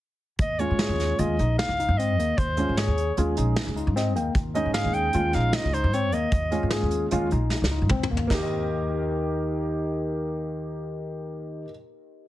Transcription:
0.39 D#2 D#5, kick, closed hi-hat
0.59 G#3 C#4 F4 C#5, closed hi-hat
0.71 G#2
0.79 G#4, snare, closed hi-hat
0.89 D#2
1.00 snare, closed hi-hat
1.19 D#2 G#3 C#4 F4 G#4 D#5, closed hi-hat
1.39 A#1 D#4, closed hi-hat
1.59 F5, snare, closed hi-hat
1.69 C#2
1.79 D#4, closed hi-hat
1.89 G#2
1.98 C4 D#5, closed hi-hat
2.18 D#2 A#3, closed hi-hat
2.38 D#2 C5, kick, closed hi-hat
2.57 G#3 C#4 F4, closed hi-hat
2.69 G#2
2.77 G#4 C#5, snare, closed hi-hat
2.88 D#2
2.98 closed hi-hat
3.17 D#2 G#3 C#4 F4 G#4, closed hi-hat
3.37 A#1 D#4, closed hi-hat
3.56 snare, closed hi-hat
3.67 C#2
3.76 D#4, closed hi-hat
3.87 G#2
3.96 C4 D#5, snare, closed hi-hat
4.15 D#2 A#3 G5, closed hi-hat
4.35 D#2, kick, closed hi-hat
4.55 G#3 C#4 D#4 D#5, closed hi-hat
4.66 G#2
4.74 G#4 F5, snare, closed hi-hat
4.85 D#2
4.93 G5, closed hi-hat
5.13 D#2 G#3 C#4 F4, closed hi-hat
5.33 A#1 D#4 F5, snare, closed hi-hat
5.53 D#5, snare, closed hi-hat
5.65 C#2
5.74 D#4 C5, closed hi-hat
5.84 G#2
5.93 C4 C#5, closed hi-hat
6.12 D#2 A#3 D#5, closed hi-hat
6.32 D#2, kick, closed hi-hat
6.51 G#3 C#4 F4, closed hi-hat
6.63 G#2
6.70 G#4, snare, closed hi-hat
6.82 D#2
6.91 closed hi-hat
7.11 D#2 G#3 C#4 F4, closed hi-hat
7.31 A#1 D#4, closed hi-hat
7.50 snare
7.62 C#2, snare
7.71 D#4
7.82 G#2
7.89 C#2 C4, kick, mid tom
8.03 mid tom
8.11 D#2 A#3
8.17 floor tom
8.27 D#2 A#3 D#4, kick, snare, splash
8.34 G4
8.39 A#4
8.43 D#5

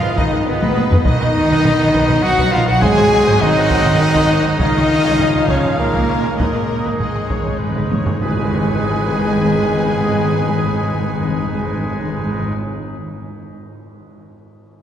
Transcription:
Already playing: G#2 D#3 F3 B3 D#4 F4 G#4 D#5 F5
0.02 G#1 B4
0.17 G#1 D#3 D#4 B4 D#5, taiko
0.32 G#1 B4, taiko low-mid
0.46 G#1 B2 B3 B4
0.62 G#1 B4, taiko high
0.76 G#1 B4, taiko high
0.90 G#1 B4, taiko low
1.04 B1 D#3 F#3 D#4 F#4 B4 D#5, taiko
1.20 B1 B4, taiko rim
1.49 B1 B4
1.64 B1 B4, taiko low-mid
1.79 B1 B4
1.93 B1 B4, taiko
2.08 B1 B4, taiko low-mid
2.21 B1 F#3 F#4 B4 F#5
2.37 B1 B4, taiko
2.51 B1 F3 F4 B4 F5
2.66 B1 F#3 F#4 B4 F#5
2.70 F#5
2.79 G#1 G#2 C4 F#4 G#4 C5 F#5 G#5, taiko
2.84 G#3 G#5
2.97 G#1 C5
3.27 G#1 C5
3.39 G#1 D#3 D#4 C5 D#5, taiko low-mid
3.56 G#1 C5
3.70 G#1 C5, taiko
3.85 G#1 C5, taiko low-mid
4.01 G#1 C5
4.14 G#1 C5, taiko
4.30 G#1 C5
4.45 G#1 C5
4.58 C#2 D#3 F3 G#3 D#4 F4 C#5 D#5 F5, taiko
4.75 C#2 C#5
5.05 C#2 C#5
5.19 C#2 C#5, taiko low-mid
5.33 C#2 C#5, taiko rim
5.47 C#2 C#3 C#4 C#5, taiko
5.63 C#2 C#5, taiko low-mid
5.76 C#2 A#2 A#3 A#4 C#5
5.80 A#4
5.93 C#2 C#5, taiko
6.08 C#2 C#5
6.23 C#2 C#5, taiko rim
6.38 G#1 A#2 D#3 A#3 D#4 A#4 B4 D#5, taiko
6.47 G#2
6.54 G#1 G#2 B4, taiko rim
6.62 G#2
6.70 G#2
6.77 G#2
6.83 G#1 G#2 B4
6.94 G#2
6.98 G#1 G#2 G#3 G#4 D#5, taiko low-mid
7.02 G#3
7.10 G#2
7.15 G#1 G#2, taiko rim
7.26 G#1 G#2 C#5
7.30 G#2, taiko
7.41 G#2
7.45 G#1 G#2, taiko low-mid
7.55 G#2
7.60 G#1 G#2 B4
7.69 G#2
7.76 G#1 G#2, taiko mid
7.85 G#2
7.90 G#1 G#2 C#5, taiko high
8.01 G#2
8.06 G#1 G#2, taiko low
8.19 G#1 G#2 D#3 G#3 B3 D#4 G#4 B4 G#5, taiko low, tam-tam
8.29 G#2
8.37 G#2
8.43 G#2
8.50 G#2
8.56 G#2
8.63 G#2
8.69 G#2
8.75 G#2
8.81 G#2
8.88 G#2
8.95 G#2
9.02 G#2
9.09 G#2
9.16 G#2
9.22 G#2
9.29 G#2
9.36 G#2
9.42 G#2
9.49 G#2
9.56 G#2
9.62 G#2
9.68 G#2
9.75 G#2
9.82 G#2
9.88 G#2
9.94 G#2
10.01 G#2
10.07 G#2
10.13 G#2
10.20 G#2
10.26 G#2
10.32 G#2
10.39 G#2
10.46 G#2
10.53 G#2
10.60 G#2
10.66 G#2
10.72 G#2
10.79 G#2
10.86 G#2
10.93 G#2
11.00 G#2
11.07 G#2
11.13 G#2
11.20 G#2
11.27 G#2
11.33 G#2
11.40 G#2
11.46 G#2
11.53 G#2
11.60 G#2
11.66 G#2
11.73 G#2
11.79 G#2
11.85 G#2
11.92 G#2
11.99 G#2
12.05 G#2
12.11 G#2
12.18 G#2
12.24 G#2
12.31 G#2
12.38 G#2
12.44 G#2
12.51 G#2

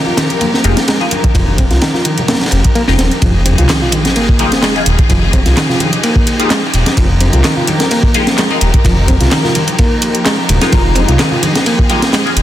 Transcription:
Already playing: F3 D#4 G4 A#4
0.06 F4, high conga
0.17 D#3, snare, closed hi-hat, ride
0.30 closed hi-hat, muted conga
0.41 A#3, closed hi-hat, ride, high conga
0.54 snare
0.64 F1 G#3 D#4 F4 G4, closed hi-hat, ride, muted conga
0.77 snare, closed hi-hat, high conga
0.88 G#3, snare, closed hi-hat, ride
1.00 G#3 D#4 F4 G#4, ride
1.11 closed hi-hat, ride, high conga
1.24 kick, closed hi-hat
1.35 F1 F3, kick, closed hi-hat, ride, muted conga
1.48 high conga
1.58 C4, kick, closed hi-hat, ride, muted conga, low conga
1.71 C2 F4, snare, closed hi-hat
1.82 D#3, snare, closed hi-hat, ride
1.94 F4, snare, high conga
2.05 D#3, closed hi-hat, ride
2.17 closed hi-hat, ride, muted conga, low conga
2.28 A#3, snare, closed hi-hat, ride, high conga
2.35 snare, ride
2.41 snare, ride
2.46 snare, ride
2.51 F1, closed hi-hat, ride
2.64 kick, closed hi-hat, high conga
2.75 A#3, closed hi-hat, ride
2.88 F1 G#3 D#4 F4 G4, snare
2.99 D#1 C4, snare, closed hi-hat, ride, high conga
3.11 closed hi-hat, ride
3.22 F1 F3 D#4 G4 G#4, kick, closed hi-hat, ride, sub drop, muted conga
3.45 C4, closed hi-hat, ride, high conga
3.58 C2 F4, closed hi-hat, low conga
3.69 D#3, snare, clap, closed hi-hat, ride
3.82 F4, low conga
3.92 D#3, closed hi-hat, ride, high conga
4.05 snare, closed hi-hat, muted conga
4.16 A#3, closed hi-hat, ride
4.29 kick
4.39 G#3 D#4 F4 G4, closed hi-hat, ride, muted conga, high conga
4.52 snare, closed hi-hat
4.63 G#3, snare, clap, closed hi-hat, ride
4.76 G#3 D#4 F4 G#4, ride
4.86 D#1, closed hi-hat, ride
4.99 kick, closed hi-hat
5.10 F1 F3, kick, closed hi-hat, ride, muted conga
5.33 C4, kick, closed hi-hat, ride, muted conga, high conga
5.46 C2 F4, snare, closed hi-hat, low conga
5.57 D#3, snare, clap, closed hi-hat, ride
5.69 F4, snare, low conga
5.80 D#3, closed hi-hat, ride, high conga
5.93 closed hi-hat, ride, muted conga
6.03 A#3, closed hi-hat, ride
6.16 kick
6.27 closed hi-hat, ride
6.39 G#3 D#4 F4 G4, closed hi-hat
6.50 G#3, snare, clap, closed hi-hat, ride
6.74 D#1, closed hi-hat, ride
6.86 snare, closed hi-hat, high conga
6.97 F1 F3 A#4, kick, closed hi-hat, ride, muted conga
7.20 C4, closed hi-hat, ride, high conga
7.33 C2 F4, closed hi-hat, low conga
7.44 D#3, snare, clap, closed hi-hat, ride
7.57 F4, low conga
7.67 D#3, closed hi-hat, ride, high conga
7.80 snare, closed hi-hat, muted conga
7.91 A#3, closed hi-hat, ride
8.03 kick
8.14 G#3 D#4 F4 G4, closed hi-hat, ride, muted conga, high conga
8.27 snare, closed hi-hat
8.38 G#3, snare, clap, closed hi-hat, ride
8.50 G#3 D#4 F4 G#4, ride
8.61 D#1, closed hi-hat, ride
8.74 kick, closed hi-hat
8.84 F1 F3, kick, closed hi-hat, ride, muted conga
9.08 C4, kick, closed hi-hat, ride, muted conga, high conga
9.21 C2 F4, snare, closed hi-hat, low conga
9.31 D#3, snare, clap, closed hi-hat, ride
9.44 F4, snare, low conga
9.55 D#3, closed hi-hat, ride, high conga
9.67 closed hi-hat, ride, muted conga
9.79 A#3, kick, closed hi-hat, ride
10.02 closed hi-hat, ride
10.15 closed hi-hat
10.25 G#3, snare, clap, closed hi-hat, ride
10.49 D#1, closed hi-hat, ride, low conga
10.61 G#3 D#4 F4 A#4, snare, closed hi-hat, high conga
10.72 F1 F3 G#4, kick, closed hi-hat, ride, muted conga
10.95 C4, closed hi-hat, ride, high conga
11.08 C2 F4, closed hi-hat, low conga
11.19 D#3, snare, clap, closed hi-hat, ride
11.31 F4, low conga
11.43 D#3, closed hi-hat, ride, high conga
11.55 snare, closed hi-hat, muted conga
11.66 A#3, closed hi-hat, ride
11.79 kick
11.89 G#3 D#4 F4 G4, closed hi-hat, ride, muted conga, high conga
12.02 snare, closed hi-hat
12.13 G#3, snare, clap, closed hi-hat, ride
12.26 G#3 D#4 F4 G#4, ride
12.36 D#1, closed hi-hat, ride

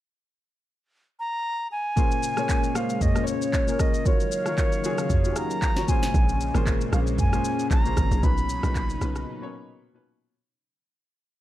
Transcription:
1.20 A#5
1.72 G#5
1.96 A#2 C#3 G#3 A#3 C#4 G#4 C5, kick, shaker
2.11 shaker
2.23 shaker
2.36 A#2 A#3 C#4 G#4 C#5, cross-stick, shaker
2.49 kick, clap, shaker
2.63 shaker
2.74 A#2 A#3 C#4 G#4 C5 F5, cross-stick, shaker
2.90 shaker
3.01 D#5, kick, mid tom, shaker
3.15 A#2 A#3 C#4 G#4 C5, cross-stick, shaker
3.24 C#5, shaker
3.28 C#5
3.42 shaker
3.53 kick, clap, shaker
3.67 A#2 A#3 C#4 G#4 A#4, shaker
3.79 D#5, kick, cross-stick, shaker
3.94 shaker
4.05 C#3 D#3 F#3 A#3 F4 F#4 C#5 F5, kick, shaker
4.20 shaker
4.32 shaker
4.45 D#3 A#3 F4 F#4 A#4, cross-stick, shaker
4.58 kick, clap, shaker
4.72 shaker
4.83 D#3 A#3 F4 F#4 G#4, shaker
4.98 cross-stick, shaker
5.10 kick, mid tom, shaker
5.24 D#3 A#3 F4 F#4 G4, shaker
5.33 G#4, cross-stick, shaker
5.37 A#5
5.50 shaker
5.62 kick, clap, shaker
5.76 D#3 A#3 F4 F#4 C#5, snare, shaker
5.87 A#2 G#3 A#3 C#4 G#4 C5 G#5, kick, shaker
6.03 snare, shaker
6.14 A#1, kick, shaker
6.29 shaker
6.41 shaker
6.54 G#1 A#2 A#3 C#4 G#4 C5, cross-stick, shaker
6.67 kick, clap, shaker
6.81 shaker
6.92 A#1 A#2 A#3 C#4 G#4 C5 F5, cross-stick, shaker
7.07 shaker
7.19 G#5, kick, mid tom, shaker
7.32 A#2 A#3 C#4 G#4 C5, cross-stick, shaker
7.45 shaker
7.59 shaker
7.71 A#1 A#5, kick, clap, shaker
7.84 A#2 A#3 C#4 G#4 C5, shaker
7.97 G#1, kick, cross-stick, shaker
8.11 A#1, shaker
8.22 B1 A#2 B2 C#3 F#3 C#4 D#4 B4 B5, kick, shaker
8.38 shaker
8.49 shaker
8.62 B1 A#2 B2 C#4 D#4 B4, cross-stick, shaker
8.75 kick, clap, shaker
8.90 shaker
9.00 B1 A#2 B2 C#4 D#4 B4, cross-stick, shaker
9.16 cross-stick, shaker
9.41 B2 A#3 C#4 D#4 C#5
9.93 A#2 B2 C#4 D#4 B4

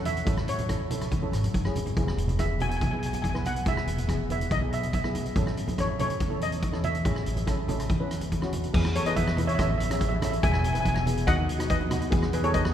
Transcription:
Already playing: E2 C#4 E4 A4
0.05 E5, closed hi-hat, low conga
0.17 closed hi-hat
0.25 A1 C#4 E4 A4, kick, closed hi-hat
0.37 cross-stick, high conga
0.47 A1 C#5, closed hi-hat
0.58 closed hi-hat, high conga, low conga
0.68 C#4 E4 A4, kick, cross-stick, closed hi-hat
0.90 C#4 E4 A4, closed hi-hat, low conga
1.01 cross-stick, closed hi-hat, high conga
1.11 E2, kick, closed hi-hat
1.22 C#4 E4 A4
1.32 G#1, cross-stick, closed hi-hat
1.44 closed hi-hat, high conga
1.54 F#1, kick, closed hi-hat, high conga
1.65 C#4 E4 G#4, cross-stick, high conga
1.75 E1, closed hi-hat, low conga
1.86 closed hi-hat, low conga
1.97 E1 B3 E4 G#4, kick, closed hi-hat
2.08 cross-stick
2.17 E1, closed hi-hat
2.28 closed hi-hat, high conga, low conga
2.39 B3 E4 G#4 E5, kick, cross-stick, closed hi-hat
2.60 B3 E4 F#4 G#5, closed hi-hat, low conga
2.69 G#5, closed hi-hat, high conga
2.77 G#5
2.81 B1 G#5, kick, closed hi-hat
2.91 B3 E4 G#4 G#5
2.99 G#5, closed hi-hat
3.06 G#5
3.13 G#5, closed hi-hat, high conga
3.22 G#5, kick, closed hi-hat
3.29 G#5
3.34 B3 E4 B4, cross-stick
3.45 F#5, closed hi-hat, low conga
3.56 closed hi-hat
3.66 E1 B3 E4 G#4 E5, kick, closed hi-hat
3.77 cross-stick
3.87 E1, closed hi-hat
3.98 closed hi-hat, low conga
4.08 B3 E4 G#4, kick, cross-stick, closed hi-hat
4.30 B3 E4 B4 E5, closed hi-hat, low conga
4.41 closed hi-hat, high conga
4.51 B1 D#5, kick, closed hi-hat
4.61 B3 E4 G#4
4.73 E5, closed hi-hat
4.83 closed hi-hat, high conga
4.93 E5, kick, closed hi-hat
5.04 B3 E4 G#4, cross-stick
5.15 closed hi-hat, low conga
5.26 closed hi-hat
5.36 A1 C#4 E4 A4, kick, closed hi-hat
5.47 cross-stick
5.57 A1, closed hi-hat
5.68 closed hi-hat, high conga, low conga
5.78 C#4 E4 A4 C#5, kick, cross-stick, closed hi-hat
5.99 C#4 E4 A4 C#5, closed hi-hat, low conga
6.10 closed hi-hat, high conga
6.20 E2, kick, closed hi-hat
6.30 C#4 E4 A4
6.41 D#5, closed hi-hat
6.52 closed hi-hat
6.62 kick, closed hi-hat
6.72 C#4 E4 A4, cross-stick
6.84 E5, closed hi-hat, low conga
6.95 closed hi-hat
7.05 A1 C#4 E4 G#4, kick, closed hi-hat
7.16 cross-stick
7.26 A1, closed hi-hat
7.36 closed hi-hat, high conga, low conga
7.47 C#4 E4 A4, kick, cross-stick, closed hi-hat
7.68 C#4 E4 A4, closed hi-hat, low conga
7.80 cross-stick, closed hi-hat
7.89 E2, kick, closed hi-hat
8.00 C#4 E4 B4
8.11 cross-stick, closed hi-hat
8.21 closed hi-hat, high conga
8.32 kick, closed hi-hat
8.42 C#4 E4 F#4, cross-stick
8.53 closed hi-hat, low conga
8.64 closed hi-hat
8.73 E2 B3 E4 G#4, kick, crash
8.85 cross-stick
8.95 A4 C#5, closed hi-hat
9.06 B3 E4 G#4 B4 D#5, closed hi-hat
9.16 B4 E5, kick, closed hi-hat
9.27 cross-stick, high conga
9.37 B3 E4 B4, closed hi-hat, low conga
9.47 C#5 E5, closed hi-hat
9.55 A1 E5
9.59 C#4 E4 A4 E5, kick, cross-stick, closed hi-hat, high conga
9.70 E5
9.78 E5, closed hi-hat
9.85 E5
9.90 C#4 E4 G#4 E5, cross-stick, closed hi-hat
10.00 E5, kick, closed hi-hat
10.09 E5, high conga
10.16 E5
10.22 C#4 E4 A4 E5, cross-stick, closed hi-hat, low conga
10.31 E5, closed hi-hat
10.43 E1 B3 E4 G#4 E5 G#5, kick, closed hi-hat
10.52 G#5, cross-stick
10.59 G#5
10.64 G#5, closed hi-hat
10.73 B3 E4 B4 G#5, closed hi-hat
10.80 G#5
10.85 G#5, kick, closed hi-hat
10.95 G#5, cross-stick, high conga
11.06 B3 E4 G#4, closed hi-hat, low conga
11.17 closed hi-hat
11.27 D#2 B3 D#4 F#4 D#5 F#5, kick, cross-stick, closed hi-hat, high conga
11.49 closed hi-hat
11.59 B3 D#4 F#4, cross-stick, closed hi-hat
11.70 B4 D#5, kick, closed hi-hat
11.81 high conga
11.90 B3 D#4 F#4, cross-stick, closed hi-hat, low conga
12.02 closed hi-hat
12.10 E2 B3 E4 G#4, kick, closed hi-hat
12.22 cross-stick
12.33 G#4 B4, closed hi-hat
12.43 B3 E4 G#4 A4 C#5, closed hi-hat
12.54 B4 D#5, kick, closed hi-hat
12.65 cross-stick, high conga

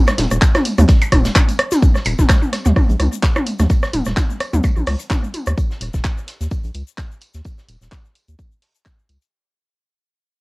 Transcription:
0.07 cross-stick, snare, closed hi-hat, shaker
0.18 D#1, snare, open hi-hat, high tom, tambourine
0.31 D#1, cross-stick, closed hi-hat, shaker
0.42 kick, snare, clap, closed hi-hat, tambourine, shaker
0.55 cross-stick, snare, open hi-hat, high tom, shaker
0.65 open hi-hat, tambourine
0.78 D#2, cross-stick, closed hi-hat, mid tom, open hi-hat, high tom, shaker
0.88 kick, snare, closed hi-hat, tambourine, shaker
1.02 closed hi-hat, percussion blips, shaker
1.12 D#1, kick, cross-stick, open hi-hat, high tom, tambourine
1.25 snare, closed hi-hat, tambourine, shaker
1.36 kick, cross-stick, clap, closed hi-hat, high tom, shaker
1.49 closed hi-hat, tambourine, shaker
1.59 cross-stick, open hi-hat
1.71 snare, closed hi-hat, high tom, tambourine, shaker
1.82 kick, high tom, tambourine, shaker
1.95 cross-stick, snare, shaker
2.05 D#1, open hi-hat, tambourine, percussion blips
2.19 D#1, kick, snare, high tom, shaker
2.29 kick, cross-stick, snare, clap, tambourine, shaker
2.42 high tom, shaker
2.53 cross-stick, snare, open hi-hat, tambourine
2.65 D#2, snare, mid tom, open hi-hat, shaker
2.76 kick, cross-stick, high tom, tambourine, shaker
2.89 A#1, closed hi-hat, shaker
3.00 C#2, cross-stick, open hi-hat, high tom, tambourine
3.12 shaker
3.23 kick, snare, clap, tambourine, shaker
3.36 cross-stick, high tom, percussion blips, shaker
3.46 open hi-hat, tambourine
3.59 D#2, cross-stick, snare, mid tom, open hi-hat, high tom, shaker
3.70 kick, tambourine, shaker
3.83 cross-stick, snare, shaker
3.93 D#1, open hi-hat, high tom, tambourine
4.05 D#1, cross-stick, snare, shaker
4.17 kick, snare, clap, high tom, tambourine, shaker
4.30 shaker
4.40 cross-stick, open hi-hat, tambourine
4.53 D#2, mid tom, open hi-hat, high tom, shaker
4.64 kick, cross-stick, tambourine, percussion blips, shaker
4.76 A#1, high tom, shaker
4.87 C#2, cross-stick, snare, open hi-hat
4.99 closed hi-hat, shaker
5.10 kick, cross-stick, snare, clap, high tom, tambourine, shaker
5.24 shaker
5.34 open hi-hat, high tom, tambourine
5.46 D#2, cross-stick, open hi-hat, shaker
5.58 kick, tambourine, shaker
5.71 snare, shaker
5.81 D#1, open hi-hat, tambourine
5.94 D#1, kick, snare, shaker
6.04 kick, snare, clap, tambourine, shaker
6.18 shaker
6.27 snare, open hi-hat, tambourine
6.41 D#2, snare, open hi-hat, shaker
6.51 kick, tambourine, shaker
6.64 A#1, closed hi-hat, shaker
6.74 C#2, open hi-hat, tambourine
6.88 shaker
6.98 kick, snare, clap, tambourine, shaker
7.12 shaker
7.21 open hi-hat, tambourine
7.34 D#2, snare, open hi-hat, shaker
7.45 kick, tambourine, shaker
7.58 snare, shaker
7.68 D#1, open hi-hat, tambourine
7.81 D#1, snare, shaker
7.92 kick, snare, clap, tambourine, shaker
8.05 shaker
8.15 open hi-hat, tambourine
8.28 D#2, open hi-hat, shaker
8.39 kick, tambourine, shaker
8.52 shaker
8.62 snare, open hi-hat
8.75 closed hi-hat, shaker
8.85 kick, snare, clap, tambourine, shaker
8.99 shaker
9.09 C#2, open hi-hat, tambourine
9.22 open hi-hat, shaker

